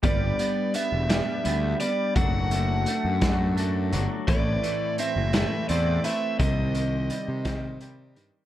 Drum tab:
HH |xxxxxx|xxxxxx|xxxxxx|xxxxxx|
SD |---o--|---o--|---o--|---o--|
BD |o-----|o--o--|o-----|o--o--|